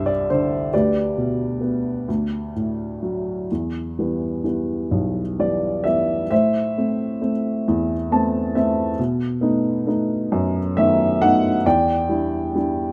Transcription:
Already playing: C2 G2 G4 C5 E5
0.06 D5
0.30 D3 C5
0.73 D2 G4 B4 D5
1.17 B2
1.61 B3
2.08 D2
2.55 A2
3.03 F#3
3.51 E2
3.99 E3 G3 B3
4.44 E3 G3 B3
4.91 B1
5.39 E3 G3 B3 D5
5.84 E3 G3 B3 E5
6.31 A2 C5 E5
6.78 A3 C4
7.21 A3 C4
7.68 E2
8.11 A3 B3 C4 A5
8.55 A3 B3 C4 E5
8.99 B2
9.41 A3 B3 D#4
9.87 A3 B3 D#4
10.32 F#2
10.77 D#3 A3 B3 E5
11.22 A3 B3 D#4 F#5
11.66 E2 D5 G5
12.09 G3 D4 E4
12.55 G3 D4 E4

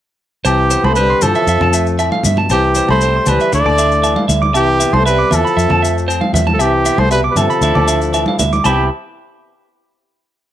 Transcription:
0.45 C2 C3 E3 G4 C5, low agogo, maracas
0.70 B3 C5, maracas
0.84 C2 A3 C5 B5, high conga, low agogo
0.96 D3 G3 B4 C5, maracas
1.10 C6
1.21 G2 E3 F3 A4 C5, low conga, low agogo, maracas
1.35 E5, maracas
1.47 F2 E5, maracas
1.61 F2 A5, low conga, low agogo
1.73 A3 E5, maracas
1.87 maracas
1.99 A2 E5, low agogo, maracas
2.12 F5, high conga
2.23 G2 B2 E5, high conga, low conga, maracas
2.37 A5, high conga
2.49 C2 C3 E3 G4 C5, low agogo, maracas
2.75 G3 C5, maracas
2.89 C2 A3 C5 B5, high conga, low agogo
3.01 C4 C5, maracas
3.16 C6
3.26 C#2 E3 B4 C5, low conga, low agogo, maracas
3.31 G3
3.40 E5, maracas
3.52 D2 D3 A3 D4 E4 D5, muted clean electric guitar stroke, maracas
3.66 D2 D6, low conga, low agogo
3.78 D4 E5, maracas
3.92 maracas
4.02 E3 E5, low agogo, maracas
4.16 F5, high conga
4.28 D2 D3 E5, high conga, maracas
4.42 D6, high conga
4.54 C2 C3 E3 G4 E5, low agogo, maracas
4.80 B3 E5, maracas
4.93 C2 A3 C5 C6, high conga, low agogo
5.06 G3 C4 B4 E5, maracas
5.19 D6
5.31 E2 E3 A4 E5, low conga, low agogo, maracas
5.35 F3
5.45 B5, maracas
5.57 F2 E5, maracas
5.70 F2 A5, low conga, low agogo
5.82 A3 E5, maracas
5.98 maracas
6.08 C4 C5, low agogo, maracas
6.21 F5, high conga
6.33 E2 F3 E5, high conga, low conga, maracas
6.47 A5, high conga
6.53 F3 A4
6.58 C2 C3 E3 G4 E5, low agogo, maracas
6.85 B3 E5, maracas
6.98 C2 A3 C5 C6, high conga, low agogo
7.10 B2 G3 B4 E5, maracas
7.24 D6
7.30 G3 B4
7.36 G2 C3 F3 A4 E5, low conga, low agogo, maracas
7.50 B5, maracas
7.61 D2 D3 A3 D4 E4 E5, maracas
7.75 D2 D6, low conga, low agogo
7.88 D4 E5, maracas
8.02 maracas
8.12 E3 E5, low agogo, maracas
8.26 F5, high conga
8.38 D2 D3 E5, high conga, low conga, maracas
8.53 D6, high conga, maracas
8.64 C2 C3 E3 B3 E4 G4 C5 E5 B5, muted clean electric guitar stroke, high conga, low agogo, maracas

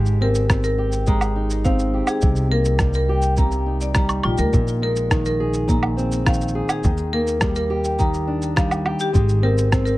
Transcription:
Already playing: G#1 D#3 G#3 G4
0.06 shaker
0.21 C4 A#4
0.35 shaker
0.49 C4, kick, cross-stick, shaker
0.64 A#4, shaker
0.78 G4
0.92 shaker
1.07 G#3 A#5, kick, shaker
1.21 low woodblock, shaker
1.36 D#4
1.50 shaker
1.65 C4 F5, kick, shaker
1.79 shaker
1.94 G4
2.07 G#4, low woodblock, shaker
2.21 C2 C3, kick, shaker
2.36 shaker
2.51 A#3 A#4
2.65 shaker
2.79 G3, kick, cross-stick, shaker
2.93 A#4, shaker
3.09 G4
3.22 shaker
3.37 C3 A#5, kick, shaker
3.51 shaker
3.66 D#4
3.81 D5, shaker
3.95 G3 A#5, kick, cross-stick, shaker
4.09 low woodblock, shaker
4.23 A#1 F4 G4, low woodblock
4.38 D2 A#4, shaker
4.53 A#1 A#2, kick, shaker
4.68 shaker
4.82 G#3 A#4
4.96 shaker
5.10 D#3, kick, cross-stick, shaker
5.25 A#4, shaker
5.40 G#4
5.54 shaker
5.68 A#2 A#5, kick, shaker
5.83 low woodblock
5.97 C4, shaker
6.12 shaker
6.25 D#3 F5, kick, cross-stick, shaker
6.34 shaker
6.41 shaker
6.48 shaker
6.55 G#4
6.69 G#4, low woodblock, shaker
6.83 D#2 D#3, kick, shaker
6.98 shaker
7.13 A#3 A#4
7.27 shaker
7.41 G3, kick, cross-stick, shaker
7.55 A#4, shaker
7.70 G4
7.84 shaker
7.99 D#3 A#5, kick, shaker
8.14 shaker
8.27 D4
8.42 shaker
8.56 G3 F5, kick, cross-stick, shaker
8.71 low woodblock, shaker
8.85 G4, low woodblock
8.99 G4, shaker
9.13 G#1 G#3, kick, shaker
9.29 shaker
9.42 C4 A#4
9.58 shaker
9.72 C4, kick, cross-stick, shaker
9.85 A#4, shaker

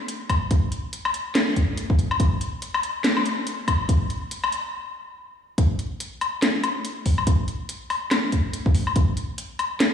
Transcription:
0.08 closed hi-hat
0.30 kick, closed hi-hat, low woodblock
0.51 kick, closed hi-hat
0.72 closed hi-hat
0.93 closed hi-hat
1.05 low woodblock
1.14 closed hi-hat
1.35 snare, closed hi-hat
1.56 kick, closed hi-hat
1.77 closed hi-hat
1.90 kick
1.99 closed hi-hat
2.11 low woodblock
2.20 kick, closed hi-hat
2.41 closed hi-hat
2.62 closed hi-hat
2.74 low woodblock
2.83 closed hi-hat
3.04 snare, closed hi-hat
3.17 low woodblock
3.26 closed hi-hat
3.47 closed hi-hat
3.68 kick, closed hi-hat, low woodblock
3.89 kick, closed hi-hat
4.10 closed hi-hat
4.31 closed hi-hat
4.44 low woodblock
4.52 closed hi-hat
5.58 kick, closed hi-hat
5.79 closed hi-hat
6.00 closed hi-hat
6.21 closed hi-hat, low woodblock
6.42 snare, closed hi-hat
6.64 closed hi-hat, low woodblock
6.85 closed hi-hat
7.06 kick, open hi-hat
7.18 low woodblock
7.27 kick, closed hi-hat
7.48 closed hi-hat
7.69 closed hi-hat
7.90 open hi-hat, low woodblock
8.11 snare, closed hi-hat, low woodblock
8.32 kick, closed hi-hat
8.53 closed hi-hat
8.66 kick
8.75 open hi-hat
8.87 low woodblock
8.96 kick, closed hi-hat
9.17 closed hi-hat
9.38 closed hi-hat
9.59 closed hi-hat, low woodblock
9.80 snare, closed hi-hat

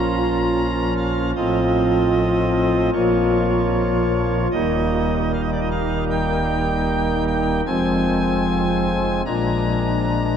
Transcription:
Already playing: A#1 A#2 F3 C#4 F4 A#5
0.97 F5
1.36 A1 A2 F3 C4 F4 D#5
2.93 A#1 A#2 F3 A#3 F4 C#5
4.52 D#1 D#2 G3 A#3 D#4 D#5
5.33 F5
5.43 D#5
5.52 D5
5.61 D#5
5.71 F5
6.10 G5
7.28 G5
7.66 F1 F2 F3 G#3 C4 G#5
9.26 A#1 A#2 F3 G#3 D4 A#5

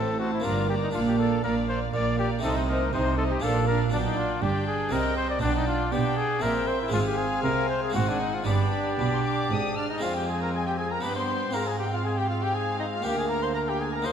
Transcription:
Already playing: A1 A2 A3 C4 F#4 A4 C5 A5
0.19 C4 F#4 C5 A5
0.33 E4
0.40 A#3 D4
0.44 G1 G2 F4 D5 A#5
0.69 A#3 G4 D5 A#5
0.83 D#4
0.91 A#1 A#2 A#3 D4 F4 D5 F5
1.08 G4
1.19 A#3 A4 D5 F5
1.43 A#1 A#2 A#3 A#4 D5 F5
1.68 A#3 C5 D5 F5
1.93 A#1 A#2 A#3 D5 F5
2.18 A#3 G4 D5 F5
2.39 A3 C4 D#4
2.43 C2 C3 D#4 A4 C5 D#5
2.68 D#4 A#4 C5 D#5
2.93 C2 C3 D#4 C5 D#5
3.18 D#4 A4 C5 D#5
3.31 G4
3.40 A#1 A#2 D4 F4 A4 D5 F5
3.67 D4 A#4 D5 F5
3.89 B1 B2 D4 D5 G5
4.06 D#4
4.17 F4
4.42 G1 G2 D4 G4 D5 G5
4.67 G#4
4.89 C2 C3 C4 D#4 A#4 D#5 G5
5.16 C5
5.30 D5
5.39 B1 B2 D4 D5 G5
5.55 D#4
5.67 F4
5.92 B2 B3 D4 G4 D5 G5
6.17 G#4
6.40 A#1 A#2 C4 E4 A#4 E5 G5
6.67 C5
6.82 E4
6.88 G#3 C4 F4
6.92 G#1 G#2 C4 F4 F5 G#5
7.06 G4
7.18 G#4
7.43 C2 C3 A#4
7.69 C5
7.83 G#4
7.90 G#3 C4 F#4
7.94 G#1 G#2 C4 F#4 F#5 G#5
8.08 D4
8.20 D#4
8.34 F4
8.44 G1 G2 B3 D4 G4 D5 B5
8.99 B1 B2 B5
9.13 C6
9.25 D6
9.51 G#1 G#2 D#6
9.76 D4 D5 F6
9.90 D#4 D#5
9.98 G#3 C4 F4
10.02 F2 C4 F4 F5 G#5
10.15 G4 G5
10.28 G#4 G#5
10.41 A#4 A#5
10.53 G#4 G#5
10.66 G4 G5
10.78 G#4 G#5
10.91 A#4 A#5
11.00 G2 B3 D4 B4 G5 B5
11.16 C5 C6
11.51 G#2 C4 F4 A#4 F5 A#5
11.66 G#4 G#5
11.79 G4 G5
11.91 F4 F5
12.03 G#4 G#5
12.17 G4 G5
12.29 F4 F5
12.41 G4 G5
12.54 G#4 G#5
12.79 D#4 D#5
12.92 F4 F5
13.02 D2 A#3 F4 G4 G5
13.16 G#4 G#5
13.29 A#4 A#5
13.42 C5 C6
13.54 A#4 A#5
13.67 G4 G5
13.79 G#4 G#5
13.92 A#4 A#5
14.02 D#2 A#3 D#4 C5 G5 C6

